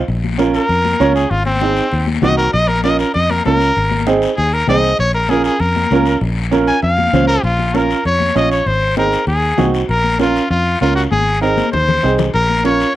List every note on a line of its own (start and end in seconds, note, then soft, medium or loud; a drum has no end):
0.08 0.57 A#1 loud
0.08 high conga soft
0.08 long guiro medium
0.24 high conga medium
0.38 0.60 C#4 medium
0.38 0.60 F4 medium
0.38 0.60 A#4 loud
0.38 high conga medium
0.38 short guiro medium
0.54 1.14 A#4 loud
0.54 short guiro medium
0.69 0.94 F2 medium
0.69 high conga soft
0.69 long guiro medium
0.85 high conga medium
1.00 1.25 C#2 medium
1.00 1.22 C#4 medium
1.00 1.21 F4 medium
1.00 1.22 C#5 loud
1.00 high conga medium
1.00 short guiro medium
1.15 1.32 G#4 medium
1.15 short guiro medium
1.30 1.80 G#1 loud
1.30 1.45 F4 medium
1.30 high conga soft
1.30 long guiro medium
1.46 2.06 C4 loud
1.46 high conga medium
1.61 1.83 C4 medium
1.61 1.83 D#4 medium
1.61 1.83 G#4 medium
1.61 high conga medium
1.61 short guiro medium
1.76 short guiro medium
1.92 2.17 D#2 medium
1.92 high conga soft
1.92 long guiro medium
2.07 high conga medium
2.22 2.48 C2 medium
2.22 2.44 C4 medium
2.22 2.44 D#4 medium
2.22 2.44 F#4 medium
2.22 2.37 D#5 loud
2.22 high conga medium
2.22 low conga medium
2.22 short guiro medium
2.37 2.53 A#4 medium
2.37 short guiro medium
2.53 3.03 A#1 loud
2.53 2.69 D#5 loud
2.53 high conga soft
2.53 long guiro medium
2.68 2.83 A#4 medium
2.68 high conga medium
2.84 3.06 C#4 medium
2.84 3.06 F4 medium
2.84 3.06 A#4 medium
2.84 2.99 D#5 medium
2.84 high conga medium
2.84 short guiro medium
2.99 3.14 A#4 medium
2.99 short guiro medium
3.14 3.40 F2 medium
3.14 3.32 D#5 medium
3.14 high conga soft
3.14 long guiro medium
3.30 3.45 A#4 medium
3.30 high conga medium
3.45 3.70 C#2 medium
3.45 3.67 C#4 medium
3.45 3.67 F4 medium
3.45 4.05 A#4 loud
3.45 3.68 A#4 medium
3.45 high conga medium
3.45 short guiro medium
3.60 short guiro medium
3.76 4.25 G#1 loud
3.76 high conga soft
3.76 long guiro medium
3.91 high conga medium
4.07 4.28 C4 medium
4.07 4.28 D#4 medium
4.07 4.29 G#4 loud
4.07 high conga medium
4.07 short guiro medium
4.22 short guiro medium
4.37 4.62 D#2 medium
4.37 4.55 G#4 loud
4.37 high conga soft
4.37 long guiro medium
4.54 4.68 A#4 medium
4.68 4.93 C2 loud
4.68 4.90 C4 medium
4.68 4.90 D#4 medium
4.68 4.90 G#4 medium
4.68 4.98 D#5 loud
4.68 high conga medium
4.68 low conga medium
4.68 short guiro medium
4.84 short guiro medium
4.98 5.48 A#1 loud
4.98 5.14 C#5 loud
4.98 high conga soft
4.98 long guiro medium
5.15 5.31 A#4 medium
5.29 5.51 C#4 medium
5.29 5.51 F4 medium
5.29 5.44 G#4 loud
5.29 5.51 A#4 medium
5.29 high conga medium
5.29 short guiro medium
5.44 5.62 G#4 medium
5.44 short guiro medium
5.60 5.85 F2 medium
5.60 6.20 A#4 medium
5.60 high conga soft
5.60 long guiro medium
5.76 high conga medium
5.90 6.15 C#2 medium
5.90 6.13 C#4 medium
5.90 6.13 F4 medium
5.90 6.13 A#4 medium
5.90 high conga medium
5.90 short guiro medium
6.06 short guiro medium
6.21 6.70 A#1 loud
6.21 high conga soft
6.21 long guiro medium
6.51 6.73 C#4 medium
6.51 6.74 F4 medium
6.51 6.74 A#4 loud
6.51 high conga medium
6.51 short guiro medium
6.67 6.82 G#5 loud
6.67 short guiro medium
6.82 7.07 F2 medium
6.82 7.27 F5 loud
6.82 high conga soft
6.82 long guiro medium
6.98 high conga medium
7.13 7.38 C#2 loud
7.13 7.35 C#4 medium
7.13 7.35 F4 medium
7.13 7.35 C5 medium
7.13 high conga medium
7.13 low conga medium
7.13 short guiro medium
7.28 7.43 A#4 loud
7.28 short guiro medium
7.43 7.93 A#1 loud
7.43 7.76 F4 medium
7.43 high conga soft
7.43 long guiro medium
7.59 high conga medium
7.74 7.96 C#4 medium
7.74 7.96 F4 medium
7.74 8.05 A#4 medium
7.74 7.96 A#4 medium
7.74 high conga medium
7.74 short guiro medium
7.90 short guiro medium
8.05 8.30 F2 medium
8.05 8.34 C#5 medium
8.05 high conga soft
8.05 long guiro medium
8.20 high conga medium
8.35 8.60 A#1 medium
8.35 8.57 C#4 medium
8.35 8.57 F4 medium
8.35 8.57 C#5 medium
8.35 8.50 D#5 loud
8.35 high conga medium
8.35 short guiro medium
8.51 8.68 C#5 medium
8.51 short guiro medium
8.66 9.15 G#1 loud
8.66 8.97 C5 loud
8.66 high conga soft
8.66 long guiro medium
8.96 9.18 C4 medium
8.96 9.18 D#4 medium
8.96 9.18 G#4 medium
8.96 9.26 A#4 medium
8.96 high conga medium
8.96 short guiro medium
9.12 short guiro medium
9.27 9.52 D#2 loud
9.27 9.71 G#4 medium
9.27 high conga soft
9.27 long guiro medium
9.58 9.83 C2 medium
9.58 9.80 C4 medium
9.58 9.80 D#4 medium
9.58 9.80 F#4 medium
9.58 high conga medium
9.58 low conga medium
9.58 short guiro medium
9.74 short guiro medium
9.89 10.38 A#1 loud
9.89 10.18 A#4 loud
9.89 high conga soft
9.89 long guiro medium
10.04 high conga medium
10.19 10.41 C#4 medium
10.19 10.41 F4 medium
10.19 10.49 F4 medium
10.19 10.41 A#4 medium
10.19 high conga medium
10.19 short guiro medium
10.36 short guiro medium
10.50 10.75 F2 medium
10.50 10.79 F4 medium
10.50 high conga soft
10.50 long guiro medium
10.81 11.06 C#2 medium
10.81 11.03 C#4 medium
10.81 10.95 F4 medium
10.81 11.03 F4 medium
10.81 11.03 A#4 medium
10.81 high conga medium
10.81 short guiro medium
10.96 11.03 F#4 medium
10.96 short guiro medium
11.11 11.61 G#1 loud
11.11 11.40 G#4 loud
11.11 high conga medium
11.11 long guiro medium
11.41 11.63 C4 medium
11.41 11.64 D#4 medium
11.41 11.64 G#4 medium
11.41 11.71 A#4 medium
11.41 short guiro medium
11.57 high conga medium
11.57 short guiro medium
11.72 11.98 D#2 medium
11.72 12.15 C5 loud
11.72 low conga medium
11.72 long guiro medium
11.88 low conga medium
12.03 12.28 C2 medium
12.03 12.25 C4 medium
12.03 12.25 D#4 medium
12.03 12.25 G#4 medium
12.03 short guiro medium
12.18 low conga loud
12.18 short guiro medium
12.34 12.83 A#1 loud
12.34 12.63 A#4 loud
12.34 high conga soft
12.34 long guiro medium
12.50 high conga medium
12.64 12.86 C#4 medium
12.64 12.86 F4 medium
12.64 12.86 A#4 medium
12.64 12.94 C#5 loud
12.64 high conga medium
12.64 short guiro medium
12.80 short guiro medium